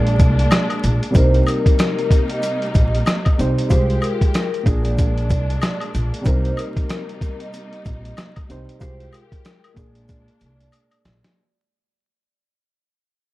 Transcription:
Already playing: A#1 A#2 G#3 A#3 D4 G#4 D5
0.07 closed hi-hat
0.19 C2, kick, closed hi-hat, shaker
0.39 closed hi-hat
0.51 cross-stick, snare, closed hi-hat, high woodblock, shaker
0.70 closed hi-hat, high woodblock
0.84 A#1, closed hi-hat, shaker
1.03 closed hi-hat
1.10 C3 G3 D#4, shaker
1.15 C2 C3 G3 A#3 D#4 A#4 C5, kick, closed hi-hat
1.34 closed hi-hat
1.47 A#4, closed hi-hat, high woodblock, shaker
1.66 kick, closed hi-hat
1.79 A#4, cross-stick, snare, closed hi-hat, shaker
1.99 closed hi-hat
2.11 kick, closed hi-hat, shaker
2.29 D#5, closed hi-hat
2.43 closed hi-hat, shaker
2.62 closed hi-hat
2.74 A#1, kick, closed hi-hat, shaker
2.95 closed hi-hat
3.06 cross-stick, snare, closed hi-hat, high woodblock, shaker
3.25 kick, closed hi-hat, high woodblock
3.38 C2 C3 G3 D#4 C5, closed hi-hat, shaker
3.58 closed hi-hat
3.69 C2 G#3 F4 G4 C5, kick, closed hi-hat, shaker
3.90 closed hi-hat
4.02 A#4, closed hi-hat, high woodblock, shaker
4.21 kick, closed hi-hat
4.34 A#4, cross-stick, snare, closed hi-hat, shaker
4.54 closed hi-hat
4.63 A#1 A#2 G#3 A#3 D4, kick, closed hi-hat, shaker
4.68 G#4
4.84 D5, closed hi-hat
4.98 kick, closed hi-hat, shaker
5.18 closed hi-hat
5.30 C2, kick, closed hi-hat, shaker
5.50 closed hi-hat
5.62 cross-stick, snare, closed hi-hat, high woodblock, shaker
5.80 closed hi-hat, high woodblock
5.94 A#1, closed hi-hat, shaker
6.14 closed hi-hat
6.21 C3 G3 D#4, shaker
6.26 C2 C3 G3 D#4 A#4 C5, kick, closed hi-hat
6.45 closed hi-hat
6.57 A#4, closed hi-hat, high woodblock, shaker
6.77 kick, closed hi-hat
6.89 A#4, cross-stick, snare, closed hi-hat, shaker
7.09 closed hi-hat
7.21 kick, closed hi-hat, shaker
7.40 D#5, closed hi-hat
7.53 closed hi-hat, shaker
7.73 closed hi-hat
7.85 A#1, kick, closed hi-hat, shaker
8.05 closed hi-hat
8.17 cross-stick, snare, closed hi-hat, high woodblock, shaker
8.36 kick, closed hi-hat, high woodblock
8.49 C2 C3 G3 D#4 C5, closed hi-hat, shaker
8.69 closed hi-hat
8.79 C2 G#3 F4 G4 C5, kick, closed hi-hat, shaker
9.00 closed hi-hat
9.13 A#4, closed hi-hat, high woodblock, shaker
9.32 kick, closed hi-hat
9.45 A#4, cross-stick, snare, closed hi-hat, shaker
9.64 closed hi-hat, high woodblock
9.74 A#1 A#2 A#3 D4, kick, closed hi-hat, shaker
9.79 G#4
9.95 D5, closed hi-hat
10.09 kick, closed hi-hat, shaker
10.28 closed hi-hat
10.40 C2, closed hi-hat, shaker
10.60 closed hi-hat
10.72 closed hi-hat, high woodblock, shaker
10.91 closed hi-hat, high woodblock
11.05 A#1, snare, closed hi-hat, shaker
11.24 snare, closed hi-hat

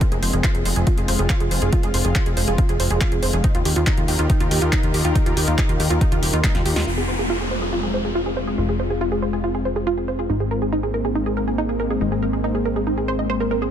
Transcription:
Already playing: G#3 C4
0.01 F4, kick, closed hi-hat
0.12 F1 G#4, closed hi-hat
0.23 F1 C5, open hi-hat
0.33 F1 G#4, closed hi-hat
0.44 F4, kick, clap, closed hi-hat
0.55 F1 G#4, closed hi-hat
0.65 F1 C5, open hi-hat
0.76 F1 G#4, closed hi-hat
0.87 F4, kick, closed hi-hat
0.98 F1 G#4, closed hi-hat
1.08 F1 C5, open hi-hat
1.19 F1 G#4, closed hi-hat
1.30 F4, kick, clap, closed hi-hat
1.40 F1 G#4, closed hi-hat
1.51 F1 C5, open hi-hat
1.62 F1 G#4, closed hi-hat
1.73 F4, kick, closed hi-hat
1.83 F1 G#4, closed hi-hat
1.94 F1 C5, open hi-hat
2.05 F1 G#4, closed hi-hat
2.15 F4, kick, clap, closed hi-hat
2.26 F1 G#4, closed hi-hat
2.37 F1 C5, open hi-hat
2.48 F1 G#4, closed hi-hat
2.58 F4, kick, closed hi-hat
2.69 F1 G#4, closed hi-hat
2.80 F1 C5, open hi-hat
2.90 F1 G#4, closed hi-hat
3.01 F4, kick, clap, closed hi-hat
3.12 F1 G#4, closed hi-hat
3.23 F1 C5, open hi-hat
3.33 F1 G#4, closed hi-hat
3.44 D#3 D#4 F4 G4 A#4, kick, closed hi-hat
3.55 D#2 F4, closed hi-hat
3.65 D#2 G4, open hi-hat
3.76 D#2 F4, closed hi-hat
3.87 D#4, kick, clap, closed hi-hat
3.97 D#2 F4, closed hi-hat
4.08 D#2 G4, open hi-hat
4.19 D#2 F4, closed hi-hat
4.30 D#4, kick, closed hi-hat
4.40 D#2 F4, closed hi-hat
4.51 D#2 G4, open hi-hat
4.62 D#2 F4, closed hi-hat
4.73 D#4, kick, clap, closed hi-hat
4.83 D#2 F4, closed hi-hat
4.94 D#2 G4, open hi-hat
5.05 D#2 F4, closed hi-hat
5.15 D#4, kick, closed hi-hat
5.26 D#2 F4, closed hi-hat
5.37 D#2 G4, open hi-hat
5.48 D#2 F4, closed hi-hat
5.58 D#4, kick, clap, closed hi-hat
5.69 D#2 F4, closed hi-hat
5.80 D#2 G4, open hi-hat
5.90 D#2 F4, closed hi-hat
6.01 D#4, kick, closed hi-hat
6.12 D#2 F4, closed hi-hat
6.23 D#1 G4, open hi-hat
6.33 D#2 F4, closed hi-hat
6.44 D#4, kick, snare, clap, closed hi-hat
6.55 D#2 F4, snare, closed hi-hat
6.65 D#2 G4, open hi-hat
6.76 D#2 F4, snare, open hi-hat
6.87 F1 G#3 C4 F4, downlifter
6.98 G#4
7.08 C5
7.19 G#4
7.30 F4
7.41 G#4
7.51 C5
7.62 G#4
7.73 F4
7.83 G#4
7.94 C5
8.05 G#4
8.15 F4
8.26 G#4
8.37 C5
8.47 G#4
8.58 F1 F4
8.69 G#4
8.80 C5
8.90 G#4
9.01 F4
9.12 G#4
9.22 C5
9.33 G#4
9.44 F4
9.55 G#4
9.65 C5
9.76 G#4
9.87 F4
9.98 G#4
10.08 C5
10.19 G#4
10.30 G#1 G#3 A#3 D#4
10.40 G#4
10.51 A#4
10.62 G#4
10.72 D#4
10.83 G#4
10.94 A#4
11.05 G#4
11.15 D#4
11.26 G#4
11.37 A#4
11.48 G#4
11.58 D#4
11.69 G#4
11.80 A#4
11.90 G#4
12.01 G#1 D#4
12.12 G#4
12.23 A#4
12.33 G#4
12.44 D#4
12.55 G#4
12.65 A#4
12.76 G#4
12.87 D#4
12.98 G#4
13.08 C5
13.19 D#5
13.30 C5
13.40 A#4
13.51 A#4
13.62 G#4

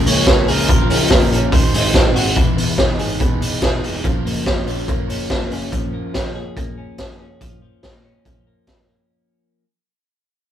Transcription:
Already playing: F3 C#4 G#4
0.06 C#2 G#3 A#3 C#4 F4 A#4 C#5, hi-hat pedal, open hi-hat
0.26 C#2 C#3 F3 G#3 C#4 F4 A#4, kick, snare, hi-hat pedal, open hi-hat
0.48 C#2 G#3 C#4 F4 G#4 A#4, hi-hat pedal, open hi-hat
0.68 F#1 F3 F#3 A#3 C#4 F4 A#4, kick, hi-hat pedal, open hi-hat
0.89 F#1 C#4 F4 A#4, hi-hat pedal, open hi-hat
1.10 F#1 F#3 A#3 C#4 F4 A#4, kick, snare, hi-hat pedal, open hi-hat
1.31 A#1 C#4 A#4, hi-hat pedal, open hi-hat
1.52 G#1 D#3 F#3 C4 F#4 C5, kick, hi-hat pedal, open hi-hat
1.73 G#1 F#3 G#3 C4 F#4, hi-hat pedal, open hi-hat
1.94 G#1 G#2 D#3 F#3 C4 F#4, kick, snare, hi-hat pedal, open hi-hat
2.15 G#1 F#3 C4 F#4, hi-hat pedal, open hi-hat
2.36 E1 E3 G#3 B3 D#4, kick, closed hi-hat
2.57 E1 B3, open hi-hat
2.78 E1 E3 G#3 B3 D#4, kick, snare, closed hi-hat
2.99 G#1 G#3 B3 D#4 G#4, open hi-hat
3.20 E1 E3 G#3 B3 D#4, kick, closed hi-hat
3.40 E1 G#3 B3 D#4, open hi-hat
3.61 E1 E3 G#3 B3 D#4 G#4, kick, snare, closed hi-hat
3.84 E1 D#4, open hi-hat
4.03 F#1 F3 F#3 A#3 C#4 F4, kick, closed hi-hat
4.25 F#1 A#3, open hi-hat
4.46 F#1 F#3 A#3 C#4 F4, kick, snare, closed hi-hat
4.67 A#1 A#3 C#4 F4, open hi-hat
4.88 F#1 F#3 A#3 C#4 F4, kick, closed hi-hat
5.09 F#1 A#3 C#4 F4, open hi-hat
5.30 F#1 F#3 A#3 C#4 F4, kick, snare, closed hi-hat
5.51 F#1 C#4, open hi-hat
5.72 F3, kick, closed hi-hat
5.94 A#3
6.14 C#4, kick, snare, closed hi-hat
6.35 G#4
6.57 A#3, kick, closed hi-hat
6.78 C#4
6.98 G#4, kick, snare, closed hi-hat
7.20 C#4
7.41 F3, kick, closed hi-hat
7.62 F3
7.83 G#3, kick, snare, closed hi-hat
7.94 A#3
8.05 C#4
8.25 F3, kick, closed hi-hat
8.47 A#3
8.67 C#4, kick, snare, closed hi-hat
8.89 A#3

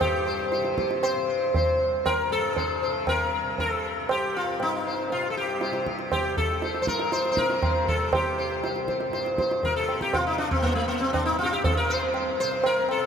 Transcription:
Already playing: C2 G2 C3
0.01 G2 G4, tabla na, tabla ge
0.26 C5
0.52 C5, tabla te
0.58 C3
0.64 tabla te
0.78 C5, tabla ke
0.91 tabla te
1.03 C5, tabla na
1.16 C3
1.54 C5, tabla tin, tabla ge
1.72 C2
2.06 A#4, tabla na, tabla ge
2.29 G2 A4
2.56 C5, tabla tin, tabla ge
2.82 C3 C5
3.07 A#4, tabla na, tabla ge
3.44 C3
3.58 A#4, tabla tin, tabla ge
3.72 A4
4.00 C2
4.09 G4, tabla na
4.37 F4
4.58 G2, tabla na
4.62 D#4
4.87 C5
5.10 C3 F4, tabla tin
5.30 A4
5.37 G4
5.61 C5, tabla te
5.71 C3, tabla te
5.86 tabla ke
5.99 tabla te
6.12 G4, tabla na, tabla ge
6.26 C2
6.37 A4, tabla ge
6.62 C5, tabla te
6.75 tabla te
6.82 G2 C5
6.87 A#4, tabla ke
6.99 tabla te
7.12 C5, tabla te
7.25 tabla te
7.31 C5
7.37 C3 A#4, tabla ke
7.50 tabla te
7.62 C5, tabla na, tabla ge
7.88 A4, tabla ge
7.95 C3
8.13 G4, tabla na, tabla ge
8.38 C5
8.51 C2
8.64 C5, tabla te
8.76 tabla te
8.88 C5, tabla ke
9.00 tabla te
9.07 G2
9.13 C5, tabla te
9.26 tabla te
9.38 C5, tabla ke
9.51 tabla te
9.63 C3 A#4, tabla tin, tabla ge
9.76 A4
9.89 tabla na
10.01 G4, tabla ke
10.13 F4, tabla na, tabla ge
10.18 C3
10.27 D#4
10.38 D4, tabla te
10.51 C4, tabla ge
10.62 A#3, tabla tin, tabla ge
10.74 C2 A3
10.88 A#3
11.01 C4
11.13 D4, tabla na, tabla ge
11.26 G2 D#4
11.39 F4
11.43 F4 G4
11.53 G4
11.64 A4, tabla tin, tabla ge
11.77 A#4
11.86 C3
11.90 C5
12.14 tabla na
12.40 C3 C5
12.64 A#4, tabla na
12.89 A4, tabla na
12.99 C2

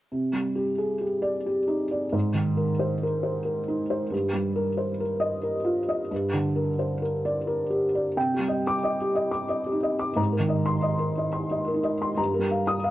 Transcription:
0.12 C3
0.33 G3
0.55 G4
0.78 G#4
1.01 G4
1.22 D5
1.47 G4
1.68 D#4
1.91 D5
2.13 G#2
2.34 D#3
2.57 A#4
2.79 C5
3.03 A#4
3.23 C5
3.45 A#4
3.68 D#4
3.90 C5
4.11 G2
4.33 G3
4.56 A#4
4.77 C5
5.00 A#4
5.20 D#5
5.43 A#4
5.64 F4
5.88 D#5
6.11 G2
6.33 D3
6.56 A#4
6.79 C5
7.02 A#4
7.25 D5
7.47 A#4
7.70 G4
7.95 D5
8.17 C3 G5
8.34 G4
8.39 G3
8.48 D#5
8.67 D6
8.83 D#5
9.01 G4
9.15 D#5
9.31 D6
9.49 D#5
9.66 G4
9.72 D#4
9.83 D#5
9.99 D6
10.16 G#2 A#5
10.32 A#4
10.39 D#3
10.49 D#5
10.66 C6
10.82 D#5
10.99 A#4
11.18 D#5
11.33 C6
11.51 D#5
11.68 A#4
11.74 D#4
11.84 D#5
12.02 C6
12.18 G2 A#5
12.34 A#4
12.39 G3
12.51 F5
12.67 D#6
12.84 F5

